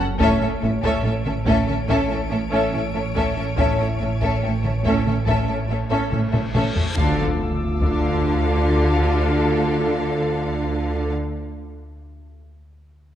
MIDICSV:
0, 0, Header, 1, 14, 480
1, 0, Start_track
1, 0, Key_signature, -1, "minor"
1, 0, Tempo, 845070
1, 115, Time_signature, 4, 2, 24, 8
1, 7469, End_track
2, 0, Start_track
2, 0, Title_t, "Violin section"
2, 0, Program_c, 0, 48
2, 115, Note_on_c, 0, 98, 53
2, 119, Note_on_c, 0, 73, 53
2, 3212, Note_off_c, 0, 98, 0
2, 3694, Note_off_c, 0, 73, 0
2, 3954, Note_on_c, 0, 86, 57
2, 3956, Note_on_c, 0, 88, 55
2, 4843, Note_off_c, 0, 88, 0
2, 4843, Note_on_c, 0, 89, 55
2, 4916, Note_off_c, 0, 89, 0
2, 4916, Note_on_c, 0, 89, 53
2, 5612, Note_off_c, 0, 86, 0
2, 5613, Note_off_c, 0, 89, 0
2, 7469, End_track
3, 0, Start_track
3, 0, Title_t, "Grand piano"
3, 0, Program_c, 1, 0
3, 0, Control_c, 1, 64, 127
3, 124, Control_c, 1, 64, 0
3, 232, Control_c, 1, 64, 127
3, 2036, Note_on_c, 1, 64, 36
3, 2037, Note_on_c, 1, 76, 52
3, 2518, Note_on_c, 1, 79, 49
3, 3453, Note_off_c, 1, 64, 0
3, 3453, Note_off_c, 1, 76, 0
3, 3934, Note_off_c, 1, 79, 0
3, 3966, Control_c, 1, 64, 0
3, 4061, Control_c, 1, 64, 127
3, 5884, Control_c, 1, 64, 0
3, 7469, End_track
4, 0, Start_track
4, 0, Title_t, "Violin section"
4, 0, Program_c, 2, 48
4, 123, Note_on_c, 2, 76, 73
4, 231, Note_off_c, 2, 76, 0
4, 238, Note_on_c, 2, 76, 43
4, 283, Note_off_c, 2, 76, 0
4, 359, Note_on_c, 2, 76, 41
4, 404, Note_off_c, 2, 76, 0
4, 476, Note_on_c, 2, 76, 67
4, 587, Note_off_c, 2, 76, 0
4, 595, Note_on_c, 2, 76, 51
4, 640, Note_off_c, 2, 76, 0
4, 712, Note_on_c, 2, 76, 49
4, 757, Note_off_c, 2, 76, 0
4, 839, Note_on_c, 2, 76, 61
4, 946, Note_off_c, 2, 76, 0
4, 953, Note_on_c, 2, 76, 45
4, 999, Note_off_c, 2, 76, 0
4, 1068, Note_on_c, 2, 76, 62
4, 1181, Note_off_c, 2, 76, 0
4, 1188, Note_on_c, 2, 76, 46
4, 1234, Note_off_c, 2, 76, 0
4, 1311, Note_on_c, 2, 76, 49
4, 1356, Note_off_c, 2, 76, 0
4, 1437, Note_on_c, 2, 76, 50
4, 1548, Note_off_c, 2, 76, 0
4, 1555, Note_on_c, 2, 76, 49
4, 1601, Note_off_c, 2, 76, 0
4, 1673, Note_on_c, 2, 76, 43
4, 1718, Note_off_c, 2, 76, 0
4, 1788, Note_on_c, 2, 76, 56
4, 1903, Note_off_c, 2, 76, 0
4, 1910, Note_on_c, 2, 76, 49
4, 1955, Note_off_c, 2, 76, 0
4, 2028, Note_on_c, 2, 76, 59
4, 2143, Note_off_c, 2, 76, 0
4, 2153, Note_on_c, 2, 76, 41
4, 2198, Note_off_c, 2, 76, 0
4, 2271, Note_on_c, 2, 76, 44
4, 2317, Note_off_c, 2, 76, 0
4, 2392, Note_on_c, 2, 76, 51
4, 2505, Note_off_c, 2, 76, 0
4, 2516, Note_on_c, 2, 76, 39
4, 2561, Note_off_c, 2, 76, 0
4, 2629, Note_on_c, 2, 76, 43
4, 2674, Note_off_c, 2, 76, 0
4, 2753, Note_on_c, 2, 76, 56
4, 2866, Note_off_c, 2, 76, 0
4, 2875, Note_on_c, 2, 76, 44
4, 2921, Note_off_c, 2, 76, 0
4, 2991, Note_on_c, 2, 76, 58
4, 3102, Note_off_c, 2, 76, 0
4, 3109, Note_on_c, 2, 76, 44
4, 3154, Note_off_c, 2, 76, 0
4, 3235, Note_on_c, 2, 76, 51
4, 3280, Note_off_c, 2, 76, 0
4, 3349, Note_on_c, 2, 76, 55
4, 3463, Note_off_c, 2, 76, 0
4, 3475, Note_on_c, 2, 76, 40
4, 3520, Note_off_c, 2, 76, 0
4, 3589, Note_on_c, 2, 76, 48
4, 3634, Note_off_c, 2, 76, 0
4, 3715, Note_on_c, 2, 76, 54
4, 3825, Note_off_c, 2, 76, 0
4, 3831, Note_on_c, 2, 76, 48
4, 3877, Note_off_c, 2, 76, 0
4, 3948, Note_on_c, 2, 77, 73
4, 4093, Note_off_c, 2, 77, 0
4, 4430, Note_on_c, 2, 77, 68
4, 6304, Note_off_c, 2, 77, 0
4, 7469, End_track
5, 0, Start_track
5, 0, Title_t, "Violin section"
5, 0, Program_c, 3, 48
5, 107, Note_on_c, 3, 69, 72
5, 222, Note_off_c, 3, 69, 0
5, 230, Note_on_c, 3, 69, 44
5, 275, Note_off_c, 3, 69, 0
5, 346, Note_on_c, 3, 69, 45
5, 392, Note_off_c, 3, 69, 0
5, 471, Note_on_c, 3, 69, 67
5, 584, Note_off_c, 3, 69, 0
5, 595, Note_on_c, 3, 69, 49
5, 640, Note_off_c, 3, 69, 0
5, 713, Note_on_c, 3, 69, 47
5, 759, Note_off_c, 3, 69, 0
5, 834, Note_on_c, 3, 69, 69
5, 946, Note_off_c, 3, 69, 0
5, 957, Note_on_c, 3, 69, 49
5, 1002, Note_off_c, 3, 69, 0
5, 1077, Note_on_c, 3, 69, 76
5, 1188, Note_off_c, 3, 69, 0
5, 1203, Note_on_c, 3, 69, 54
5, 1248, Note_off_c, 3, 69, 0
5, 1314, Note_on_c, 3, 69, 52
5, 1360, Note_off_c, 3, 69, 0
5, 1432, Note_on_c, 3, 69, 62
5, 1545, Note_off_c, 3, 69, 0
5, 1555, Note_on_c, 3, 69, 40
5, 1601, Note_off_c, 3, 69, 0
5, 1673, Note_on_c, 3, 69, 45
5, 1719, Note_off_c, 3, 69, 0
5, 1796, Note_on_c, 3, 69, 53
5, 1907, Note_off_c, 3, 69, 0
5, 1914, Note_on_c, 3, 69, 50
5, 1959, Note_off_c, 3, 69, 0
5, 2036, Note_on_c, 3, 69, 59
5, 2147, Note_off_c, 3, 69, 0
5, 2158, Note_on_c, 3, 69, 37
5, 2204, Note_off_c, 3, 69, 0
5, 2280, Note_on_c, 3, 69, 39
5, 2326, Note_off_c, 3, 69, 0
5, 2397, Note_on_c, 3, 69, 55
5, 2507, Note_off_c, 3, 69, 0
5, 2518, Note_on_c, 3, 69, 39
5, 2563, Note_off_c, 3, 69, 0
5, 2640, Note_on_c, 3, 69, 43
5, 2685, Note_off_c, 3, 69, 0
5, 2757, Note_on_c, 3, 69, 62
5, 2868, Note_off_c, 3, 69, 0
5, 2874, Note_on_c, 3, 69, 42
5, 2920, Note_off_c, 3, 69, 0
5, 2994, Note_on_c, 3, 69, 63
5, 3106, Note_off_c, 3, 69, 0
5, 3122, Note_on_c, 3, 69, 38
5, 3168, Note_off_c, 3, 69, 0
5, 3243, Note_on_c, 3, 69, 45
5, 3289, Note_off_c, 3, 69, 0
5, 3355, Note_on_c, 3, 69, 58
5, 3464, Note_off_c, 3, 69, 0
5, 3470, Note_on_c, 3, 69, 39
5, 3516, Note_off_c, 3, 69, 0
5, 3591, Note_on_c, 3, 69, 52
5, 3636, Note_off_c, 3, 69, 0
5, 3717, Note_on_c, 3, 69, 58
5, 3827, Note_off_c, 3, 69, 0
5, 3834, Note_on_c, 3, 69, 43
5, 3880, Note_off_c, 3, 69, 0
5, 3958, Note_on_c, 3, 69, 64
5, 4097, Note_off_c, 3, 69, 0
5, 4433, Note_on_c, 3, 69, 63
5, 6306, Note_off_c, 3, 69, 0
5, 7469, End_track
6, 0, Start_track
6, 0, Title_t, "Viola section"
6, 0, Program_c, 4, 48
6, 115, Note_on_c, 4, 61, 73
6, 227, Note_off_c, 4, 61, 0
6, 239, Note_on_c, 4, 61, 44
6, 284, Note_off_c, 4, 61, 0
6, 360, Note_on_c, 4, 61, 49
6, 405, Note_off_c, 4, 61, 0
6, 478, Note_on_c, 4, 61, 72
6, 588, Note_off_c, 4, 61, 0
6, 595, Note_on_c, 4, 61, 41
6, 640, Note_off_c, 4, 61, 0
6, 716, Note_on_c, 4, 61, 50
6, 761, Note_off_c, 4, 61, 0
6, 832, Note_on_c, 4, 61, 60
6, 942, Note_off_c, 4, 61, 0
6, 949, Note_on_c, 4, 61, 49
6, 995, Note_off_c, 4, 61, 0
6, 1071, Note_on_c, 4, 61, 58
6, 1174, Note_off_c, 4, 61, 0
6, 1181, Note_on_c, 4, 61, 45
6, 1226, Note_off_c, 4, 61, 0
6, 1302, Note_on_c, 4, 61, 54
6, 1347, Note_off_c, 4, 61, 0
6, 1424, Note_on_c, 4, 61, 66
6, 1541, Note_off_c, 4, 61, 0
6, 1549, Note_on_c, 4, 61, 43
6, 1595, Note_off_c, 4, 61, 0
6, 1669, Note_on_c, 4, 61, 46
6, 1714, Note_off_c, 4, 61, 0
6, 1790, Note_on_c, 4, 61, 61
6, 1902, Note_off_c, 4, 61, 0
6, 1909, Note_on_c, 4, 61, 50
6, 1954, Note_off_c, 4, 61, 0
6, 2034, Note_on_c, 4, 61, 58
6, 2146, Note_off_c, 4, 61, 0
6, 2155, Note_on_c, 4, 61, 41
6, 2200, Note_off_c, 4, 61, 0
6, 2282, Note_on_c, 4, 61, 36
6, 2328, Note_off_c, 4, 61, 0
6, 2396, Note_on_c, 4, 61, 60
6, 2507, Note_off_c, 4, 61, 0
6, 2521, Note_on_c, 4, 61, 41
6, 2566, Note_off_c, 4, 61, 0
6, 2640, Note_on_c, 4, 61, 37
6, 2686, Note_off_c, 4, 61, 0
6, 2762, Note_on_c, 4, 61, 58
6, 2871, Note_off_c, 4, 61, 0
6, 2884, Note_on_c, 4, 61, 41
6, 2929, Note_off_c, 4, 61, 0
6, 2998, Note_on_c, 4, 61, 53
6, 3108, Note_off_c, 4, 61, 0
6, 3121, Note_on_c, 4, 61, 38
6, 3166, Note_off_c, 4, 61, 0
6, 3241, Note_on_c, 4, 61, 42
6, 3287, Note_off_c, 4, 61, 0
6, 3356, Note_on_c, 4, 61, 59
6, 3467, Note_off_c, 4, 61, 0
6, 3478, Note_on_c, 4, 61, 42
6, 3524, Note_off_c, 4, 61, 0
6, 3600, Note_on_c, 4, 61, 46
6, 3645, Note_off_c, 4, 61, 0
6, 3726, Note_on_c, 4, 61, 55
6, 3833, Note_off_c, 4, 61, 0
6, 3845, Note_on_c, 4, 61, 48
6, 3890, Note_off_c, 4, 61, 0
6, 3962, Note_on_c, 4, 62, 61
6, 4100, Note_off_c, 4, 62, 0
6, 4440, Note_on_c, 4, 62, 63
6, 6309, Note_off_c, 4, 62, 0
6, 7469, End_track
7, 0, Start_track
7, 0, Title_t, "French horn section"
7, 0, Program_c, 5, 60
7, 118, Note_on_c, 5, 61, 65
7, 121, Note_on_c, 5, 57, 69
7, 294, Note_off_c, 5, 61, 0
7, 296, Note_off_c, 5, 57, 0
7, 1074, Note_on_c, 5, 57, 55
7, 1075, Note_on_c, 5, 61, 54
7, 1252, Note_off_c, 5, 57, 0
7, 1253, Note_off_c, 5, 61, 0
7, 2034, Note_on_c, 5, 61, 51
7, 2035, Note_on_c, 5, 57, 52
7, 2212, Note_off_c, 5, 61, 0
7, 2213, Note_off_c, 5, 57, 0
7, 3002, Note_on_c, 5, 61, 50
7, 3005, Note_on_c, 5, 57, 43
7, 3176, Note_off_c, 5, 61, 0
7, 3178, Note_off_c, 5, 57, 0
7, 3958, Note_on_c, 5, 57, 68
7, 3961, Note_on_c, 5, 65, 68
7, 6308, Note_off_c, 5, 57, 0
7, 6309, Note_off_c, 5, 65, 0
7, 7469, End_track
8, 0, Start_track
8, 0, Title_t, "Cello section"
8, 0, Program_c, 6, 48
8, 112, Note_on_c, 6, 45, 69
8, 157, Note_off_c, 6, 45, 0
8, 237, Note_on_c, 6, 45, 45
8, 282, Note_off_c, 6, 45, 0
8, 355, Note_on_c, 6, 45, 50
8, 401, Note_off_c, 6, 45, 0
8, 474, Note_on_c, 6, 45, 77
8, 519, Note_off_c, 6, 45, 0
8, 593, Note_on_c, 6, 45, 55
8, 638, Note_off_c, 6, 45, 0
8, 711, Note_on_c, 6, 45, 47
8, 757, Note_off_c, 6, 45, 0
8, 835, Note_on_c, 6, 45, 68
8, 881, Note_off_c, 6, 45, 0
8, 953, Note_on_c, 6, 45, 47
8, 998, Note_off_c, 6, 45, 0
8, 1070, Note_on_c, 6, 45, 67
8, 1116, Note_off_c, 6, 45, 0
8, 1192, Note_on_c, 6, 45, 48
8, 1237, Note_off_c, 6, 45, 0
8, 1314, Note_on_c, 6, 45, 45
8, 1359, Note_off_c, 6, 45, 0
8, 1430, Note_on_c, 6, 45, 60
8, 1475, Note_off_c, 6, 45, 0
8, 1552, Note_on_c, 6, 45, 40
8, 1597, Note_off_c, 6, 45, 0
8, 1674, Note_on_c, 6, 45, 45
8, 1719, Note_off_c, 6, 45, 0
8, 1794, Note_on_c, 6, 45, 60
8, 1840, Note_off_c, 6, 45, 0
8, 1916, Note_on_c, 6, 45, 48
8, 1962, Note_off_c, 6, 45, 0
8, 2035, Note_on_c, 6, 45, 58
8, 2080, Note_off_c, 6, 45, 0
8, 2156, Note_on_c, 6, 45, 43
8, 2202, Note_off_c, 6, 45, 0
8, 2277, Note_on_c, 6, 45, 40
8, 2322, Note_off_c, 6, 45, 0
8, 2394, Note_on_c, 6, 45, 59
8, 2439, Note_off_c, 6, 45, 0
8, 2516, Note_on_c, 6, 45, 43
8, 2562, Note_off_c, 6, 45, 0
8, 2634, Note_on_c, 6, 45, 39
8, 2679, Note_off_c, 6, 45, 0
8, 2750, Note_on_c, 6, 45, 59
8, 2796, Note_off_c, 6, 45, 0
8, 2872, Note_on_c, 6, 45, 45
8, 2918, Note_off_c, 6, 45, 0
8, 2990, Note_on_c, 6, 45, 59
8, 3035, Note_off_c, 6, 45, 0
8, 3113, Note_on_c, 6, 45, 42
8, 3158, Note_off_c, 6, 45, 0
8, 3230, Note_on_c, 6, 45, 38
8, 3275, Note_off_c, 6, 45, 0
8, 3349, Note_on_c, 6, 45, 57
8, 3395, Note_off_c, 6, 45, 0
8, 3473, Note_on_c, 6, 45, 36
8, 3518, Note_off_c, 6, 45, 0
8, 3595, Note_on_c, 6, 45, 36
8, 3641, Note_off_c, 6, 45, 0
8, 3713, Note_on_c, 6, 45, 56
8, 3758, Note_off_c, 6, 45, 0
8, 3833, Note_on_c, 6, 45, 45
8, 3879, Note_off_c, 6, 45, 0
8, 3951, Note_on_c, 6, 50, 62
8, 4094, Note_off_c, 6, 50, 0
8, 4435, Note_on_c, 6, 50, 81
8, 6307, Note_off_c, 6, 50, 0
8, 7469, End_track
9, 0, Start_track
9, 0, Title_t, "Cello section"
9, 0, Program_c, 7, 48
9, 113, Note_on_c, 7, 45, 69
9, 258, Note_off_c, 7, 45, 0
9, 351, Note_on_c, 7, 45, 57
9, 496, Note_off_c, 7, 45, 0
9, 591, Note_on_c, 7, 45, 56
9, 736, Note_off_c, 7, 45, 0
9, 830, Note_on_c, 7, 45, 77
9, 976, Note_off_c, 7, 45, 0
9, 1070, Note_on_c, 7, 45, 54
9, 1216, Note_off_c, 7, 45, 0
9, 1310, Note_on_c, 7, 57, 48
9, 1456, Note_off_c, 7, 57, 0
9, 1553, Note_on_c, 7, 45, 57
9, 1697, Note_off_c, 7, 45, 0
9, 1793, Note_on_c, 7, 45, 47
9, 1938, Note_off_c, 7, 45, 0
9, 2033, Note_on_c, 7, 45, 65
9, 2177, Note_off_c, 7, 45, 0
9, 2273, Note_on_c, 7, 45, 46
9, 2417, Note_off_c, 7, 45, 0
9, 2514, Note_on_c, 7, 45, 47
9, 2658, Note_off_c, 7, 45, 0
9, 2753, Note_on_c, 7, 45, 65
9, 2897, Note_off_c, 7, 45, 0
9, 2996, Note_on_c, 7, 45, 45
9, 3140, Note_off_c, 7, 45, 0
9, 3238, Note_on_c, 7, 57, 51
9, 3381, Note_off_c, 7, 57, 0
9, 3480, Note_on_c, 7, 45, 59
9, 3622, Note_off_c, 7, 45, 0
9, 3721, Note_on_c, 7, 45, 46
9, 3863, Note_off_c, 7, 45, 0
9, 7469, End_track
10, 0, Start_track
10, 0, Title_t, "Double bass section"
10, 0, Program_c, 8, 48
10, 111, Note_on_c, 8, 33, 81
10, 156, Note_off_c, 8, 33, 0
10, 350, Note_on_c, 8, 33, 53
10, 395, Note_off_c, 8, 33, 0
10, 591, Note_on_c, 8, 33, 55
10, 637, Note_off_c, 8, 33, 0
10, 830, Note_on_c, 8, 33, 68
10, 875, Note_off_c, 8, 33, 0
10, 1072, Note_on_c, 8, 33, 55
10, 1118, Note_off_c, 8, 33, 0
10, 1312, Note_on_c, 8, 33, 48
10, 1358, Note_off_c, 8, 33, 0
10, 1553, Note_on_c, 8, 33, 47
10, 1598, Note_off_c, 8, 33, 0
10, 1792, Note_on_c, 8, 33, 60
10, 1838, Note_off_c, 8, 33, 0
10, 2030, Note_on_c, 8, 33, 62
10, 2075, Note_off_c, 8, 33, 0
10, 2270, Note_on_c, 8, 33, 44
10, 2316, Note_off_c, 8, 33, 0
10, 2511, Note_on_c, 8, 33, 41
10, 2557, Note_off_c, 8, 33, 0
10, 2752, Note_on_c, 8, 33, 59
10, 2798, Note_off_c, 8, 33, 0
10, 2991, Note_on_c, 8, 33, 49
10, 3036, Note_off_c, 8, 33, 0
10, 3235, Note_on_c, 8, 33, 47
10, 3280, Note_off_c, 8, 33, 0
10, 3476, Note_on_c, 8, 33, 48
10, 3521, Note_off_c, 8, 33, 0
10, 3717, Note_on_c, 8, 33, 60
10, 3762, Note_off_c, 8, 33, 0
10, 3960, Note_on_c, 8, 38, 68
10, 4099, Note_off_c, 8, 38, 0
10, 4442, Note_on_c, 8, 38, 69
10, 6310, Note_off_c, 8, 38, 0
10, 7469, End_track
11, 0, Start_track
11, 0, Title_t, "Synth drone"
11, 0, Program_c, 10, 95
11, 0, Note_on_c, 10, 30, 74
11, 90, Note_off_c, 10, 30, 0
11, 111, Note_on_c, 10, 33, 79
11, 2026, Note_off_c, 10, 33, 0
11, 2033, Note_on_c, 10, 33, 78
11, 3931, Note_off_c, 10, 33, 0
11, 3961, Note_on_c, 10, 38, 75
11, 6309, Note_off_c, 10, 38, 0
11, 7469, End_track
12, 0, Start_track
12, 0, Title_t, "Impact"
12, 0, Program_c, 11, 103
12, 3956, Note_on_c, 11, 60, 70
12, 6409, Note_off_c, 11, 60, 0
12, 7469, End_track
13, 0, Start_track
13, 0, Title_t, "Reverse cymbal"
13, 0, Program_c, 12, 119
13, 2034, Note_on_c, 12, 60, 47
13, 3954, Note_off_c, 12, 60, 0
13, 7469, End_track
14, 0, Start_track
14, 0, Title_t, "Taiko and cinematic ensemble drums"
14, 111, Note_on_c, 9, 41, 75
14, 168, Note_off_c, 9, 41, 0
14, 474, Note_on_c, 9, 41, 73
14, 531, Note_off_c, 9, 41, 0
14, 715, Note_on_c, 9, 47, 50
14, 772, Note_off_c, 9, 47, 0
14, 833, Note_on_c, 9, 41, 73
14, 890, Note_off_c, 9, 41, 0
14, 957, Note_on_c, 9, 47, 47
14, 1014, Note_off_c, 9, 47, 0
14, 1074, Note_on_c, 9, 41, 67
14, 1131, Note_off_c, 9, 41, 0
14, 1793, Note_on_c, 9, 41, 70
14, 1850, Note_off_c, 9, 41, 0
14, 2034, Note_on_c, 9, 41, 81
14, 2090, Note_off_c, 9, 41, 0
14, 2394, Note_on_c, 9, 41, 69
14, 2451, Note_off_c, 9, 41, 0
14, 2639, Note_on_c, 9, 47, 45
14, 2695, Note_off_c, 9, 47, 0
14, 2755, Note_on_c, 9, 41, 66
14, 2812, Note_off_c, 9, 41, 0
14, 2876, Note_on_c, 9, 47, 48
14, 2933, Note_off_c, 9, 47, 0
14, 2998, Note_on_c, 9, 41, 72
14, 3055, Note_off_c, 9, 41, 0
14, 3478, Note_on_c, 9, 45, 81
14, 3535, Note_off_c, 9, 45, 0
14, 3599, Note_on_c, 9, 45, 86
14, 3656, Note_off_c, 9, 45, 0
14, 3720, Note_on_c, 9, 45, 84
14, 3777, Note_off_c, 9, 45, 0
14, 3841, Note_on_c, 9, 43, 83
14, 3898, Note_off_c, 9, 43, 0
14, 3962, Note_on_c, 9, 41, 91
14, 4019, Note_off_c, 9, 41, 0
14, 4441, Note_on_c, 9, 41, 96
14, 4498, Note_off_c, 9, 41, 0
14, 7469, End_track
0, 0, End_of_file